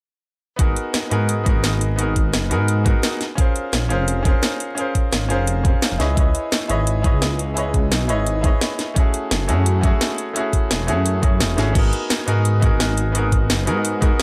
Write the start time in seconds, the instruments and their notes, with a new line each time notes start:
0.56 detuned saw bass G#1, grand piano B3 D#4 F#4 G#4, kick, closed hi-hat
0.62 grand piano A#4
0.76 closed hi-hat
0.94 snare, closed hi-hat
1.10 detuned saw bass G#2, grand piano B3 D#4 F#4 G#4 A#4, closed hi-hat
1.29 closed hi-hat
1.44 grand piano B3 D#4 F#4 G#4, kick, closed hi-hat
1.49 grand piano A#4
1.56 detuned saw bass G#1
1.64 snare, closed hi-hat
1.81 closed hi-hat
1.96 grand piano B3 D#4 F#4 G#4, closed hi-hat
2.01 grand piano A#4
2.16 kick, closed hi-hat
2.33 detuned saw bass F#1, snare, closed hi-hat
2.50 detuned saw bass G#2, grand piano B3 D#4 F#4 G#4 A#4, closed hi-hat
2.68 closed hi-hat
2.84 grand piano B3 D#4 F#4 G#4 A#4, kick, closed hi-hat
3.03 snare, closed hi-hat
3.21 snare, closed hi-hat
3.35 grand piano C#4 F4 G#4 A#4, kick, closed hi-hat
3.41 grand piano C5
3.56 closed hi-hat
3.73 detuned saw bass A#1, snare, closed hi-hat
3.89 detuned saw bass F1, grand piano C#4 F4 G#4 A#4 C5, closed hi-hat
4.08 closed hi-hat
4.23 grand piano C#4 F4 G#4 A#4, kick, closed hi-hat
4.28 grand piano C5
4.43 snare, closed hi-hat
4.60 closed hi-hat
4.75 grand piano C#4 F4 G#4 A#4, closed hi-hat
4.80 grand piano C5
4.95 kick, closed hi-hat
5.13 detuned saw bass G#1, snare, closed hi-hat
5.29 detuned saw bass F1, grand piano C#4 F4 G#4 A#4 C5, closed hi-hat
5.47 closed hi-hat
5.64 grand piano C#4 F4 G#4 A#4 C5, kick, closed hi-hat
5.82 snare, closed hi-hat
5.92 detuned saw bass F1
5.98 detuned saw bass C#2, grand piano E4 G#4 B4 C#5 D#5, snare, closed hi-hat
6.15 detuned saw bass C#2, grand piano E4 G#4 B4 C#5, kick, closed hi-hat
6.20 grand piano D#5
6.35 closed hi-hat
6.52 snare, closed hi-hat
6.68 detuned saw bass G#1, grand piano E4 G#4 B4 C#5 D#5, closed hi-hat
6.87 closed hi-hat
7.02 grand piano E4 G#4 B4 C#5, kick, closed hi-hat
7.07 grand piano D#5
7.14 detuned saw bass C#2
7.22 snare, closed hi-hat
7.39 closed hi-hat
7.54 grand piano E4 G#4 B4 C#5, closed hi-hat
7.59 grand piano D#5
7.74 kick, closed hi-hat
7.92 detuned saw bass B1, snare, closed hi-hat
8.08 detuned saw bass G#1, grand piano E4 G#4 B4 C#5 D#5, closed hi-hat
8.27 closed hi-hat
8.41 grand piano E4 G#4 B4 C#5, kick, closed hi-hat
8.47 grand piano D#5
8.61 snare, closed hi-hat
8.79 snare, closed hi-hat
8.94 grand piano A3 C#4 E4 F#4, kick, closed hi-hat
8.99 grand piano G#4
9.14 closed hi-hat
9.31 detuned saw bass F#1, snare, closed hi-hat
9.47 detuned saw bass F#2, grand piano A3 C#4 E4 F#4 G#4, closed hi-hat
9.66 closed hi-hat
9.81 grand piano A3 C#4 E4 F#4, kick, closed hi-hat
9.86 grand piano G#4
10.01 snare, closed hi-hat
10.18 closed hi-hat
10.33 grand piano A3 C#4 E4 F#4, closed hi-hat
10.39 grand piano G#4
10.53 kick, closed hi-hat
10.71 detuned saw bass E1, snare, closed hi-hat
10.87 detuned saw bass F#2, grand piano A3 C#4 E4 F#4 G#4, closed hi-hat
11.06 closed hi-hat
11.22 grand piano A3 C#4 E4 F#4 G#4, kick, closed hi-hat
11.40 detuned saw bass E1, snare, closed hi-hat
11.56 detuned saw bass G#1, grand piano A3 C#4 E4 F#4 G#4, snare, closed hi-hat
11.73 detuned saw bass G#1, grand piano B3 D#4 F#4 G#4, kick, closed hi-hat, crash
11.78 grand piano A#4
11.93 closed hi-hat
12.10 snare, closed hi-hat
12.26 detuned saw bass G#2, grand piano B3 D#4 F#4 G#4 A#4, closed hi-hat
12.45 closed hi-hat
12.60 grand piano B3 D#4 F#4 G#4, kick, closed hi-hat
12.65 grand piano A#4
12.72 detuned saw bass G#1
12.80 snare, closed hi-hat
12.97 closed hi-hat
13.12 grand piano B3 D#4 F#4 G#4, closed hi-hat
13.17 grand piano A#4
13.32 kick, closed hi-hat
13.50 detuned saw bass F#1, snare, closed hi-hat
13.66 detuned saw bass G#2, grand piano B3 D#4 F#4 G#4 A#4, closed hi-hat
13.85 closed hi-hat
14.01 grand piano B3 D#4 F#4 G#4 A#4, kick, closed hi-hat